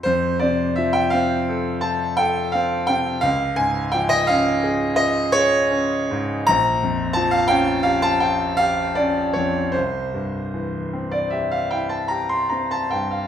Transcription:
\new Staff \with { instrumentName = "Grand piano" } { \time 9/8 \key c \mixolydian \tempo 4. = 55 << { c''8 d''8 e''16 g''16 f''4 a''8 g''8 f''8 g''8 | f''8 aes''8 g''16 ees''16 f''4 ees''8 des''4. | bes''4 a''16 f''16 g''8 f''16 a''16 g''8 f''8 d''8 des''8 | c''4.~ c''16 d''16 e''16 f''16 g''16 a''16 bes''16 c'''16 bes''16 a''16 g''16 f''16 | } \\ { f,8 c8 f8 c'8 a'8 f'8 a'8 c'8 c8 | des,8 aes,8 f8 des'8 aes'8 f'8 aes'8 des'8 aes,8 | bes,,8 f,8 f8 des'8 g'8 f'8 g'8 des'8 f,8 | c,8 g,8 e8 c'8 g'8 e'8 g'8 c'8 g,8 | } >> }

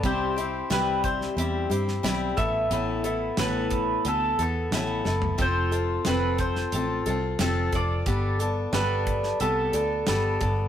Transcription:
<<
  \new Staff \with { instrumentName = "Mandolin" } { \time 4/4 \key g \major \tempo 4 = 90 c''4 b'8 c''4 r4 e''8~ | e''4 b'4 a'8 a'4 r8 | c''4 b'8 c''4 r4 d''8~ | d''4 b'4 a'8 a'4 r8 | }
  \new Staff \with { instrumentName = "Steel-string acoustic guitar" } { \time 4/4 \key g \major <c g c' e' g'>8 <c' e' g'>8 <c g c' e' g'>4 <g c' e' g'>8 <c' e' g'>8 <g c' e' g'>8 <b e' a'>8 | <a, e b e' a'>8 <b e' a'>8 <a, e b e' a'>4 <e b e' a'>8 <b e' a'>8 <a, e b e' a'>8 <b e' a'>8 | <f c' f' a'>8 <c' f' a'>8 <f c' f' a'>4 <f c' f' a'>8 <c' f' a'>8 <f c' f' a'>8 <c' f' a'>8 | <g b d' a'>8 <b d' a'>8 <g b d' a'>4 <g b d' a'>8 <b d' a'>8 <g b d' a'>8 <b d' a'>8 | }
  \new Staff \with { instrumentName = "Fingered electric bass" } { \clef bass \time 4/4 \key g \major c,4 c,4 e,8 g,8 b,,8 a,,8 | a,,4 a,,4 d,8 e,8 a,,8 fis,,8 | f,,4 f,,4 a,,8 c,8 f,,8 f,,8 | g,,4 g,,4 c,8 d,8 g,,8 g,,8 | }
  \new DrumStaff \with { instrumentName = "Drums" } \drummode { \time 4/4 <hh bd>8 hh8 <hh sn>8 <hh bd>16 sn16 hh8 hh16 sn16 <hh sn>8 <hh bd>8 | hh8 hh8 <hh sn>8 <hh bd>8 hh8 hh8 <hh sn>8 sn16 tomfh16 | <hh bd>8 hh8 <hh sn>8 <hh bd>16 sn16 hh8 hh8 <hh sn>8 <hh bd>8 | <hh bd>8 hh8 <hh sn>8 <hh bd>16 sn16 hh8 hh8 <hh sn>8 <hh bd>8 | }
>>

